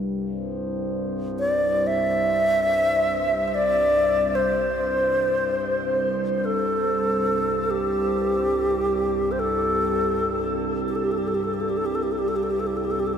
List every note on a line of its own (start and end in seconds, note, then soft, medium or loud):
0.08 13.18 C2 medium
0.08 13.18 G2 medium
0.25 8.49 C5 soft
1.39 1.88 D5 medium
1.87 3.48 E5 medium
3.48 3.56 E5 medium
3.55 4.37 D5 loud
4.35 6.14 C5 medium
6.35 6.47 C5 soft
6.45 7.72 A4 medium
7.71 9.33 G4 medium
8.77 13.18 G4 soft
9.32 9.41 C5 medium
9.39 10.62 A4 medium
10.88 10.97 G4 medium
10.95 11.06 A4 soft
11.04 11.13 G4 medium
11.12 11.20 A4 medium
11.18 11.29 G4 soft
11.28 11.36 A4 soft
11.35 11.46 G4 medium
11.44 11.55 A4 soft
11.54 11.63 G4 medium
11.61 11.71 A4 soft
11.70 11.79 G4 soft
11.77 11.87 A4 medium
11.86 11.97 G4 medium
11.95 12.05 A4 medium
12.03 12.14 G4 soft
12.12 12.20 A4 soft
12.19 12.30 G4 medium
12.28 12.38 A4 soft
12.36 12.45 G4 soft
12.43 12.52 A4 soft
12.51 12.61 G4 medium
12.60 12.68 A4 soft
12.67 12.78 G4 soft
12.77 12.86 A4 soft
12.85 12.92 G4 medium
12.91 13.01 A4 medium
13.00 13.08 G4 medium
13.07 13.15 A4 soft
13.14 13.18 G4 medium